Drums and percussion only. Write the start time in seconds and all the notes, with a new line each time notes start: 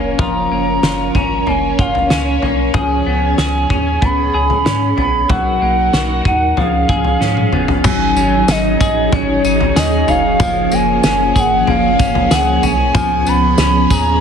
0.19 kick, floor tom
0.83 snare
1.15 kick, floor tom
1.47 floor tom
1.79 kick
1.95 floor tom
2.10 snare
2.42 floor tom
2.74 kick, floor tom
3.38 snare
3.70 kick
4.02 kick, floor tom
4.50 floor tom
4.66 snare
4.98 floor tom
5.30 kick, floor tom
5.93 snare
6.25 kick
6.57 floor tom
6.89 kick
7.04 floor tom
7.21 snare
7.37 high tom
7.52 mid tom
7.68 floor tom
7.84 kick, floor tom, crash, tambourine
8.16 tambourine
8.48 snare, tambourine
8.81 kick, tambourine
9.12 kick, floor tom
9.45 tambourine
9.61 floor tom
9.76 snare, tambourine
10.08 floor tom, tambourine
10.40 kick, floor tom, tambourine
10.72 tambourine
11.03 snare, tambourine
11.36 kick, tambourine
11.67 floor tom
11.99 kick, tambourine
12.15 floor tom
12.31 snare, tambourine
12.63 floor tom, tambourine
12.95 kick, floor tom, tambourine
13.26 tambourine
13.58 snare, tambourine
13.90 kick, tambourine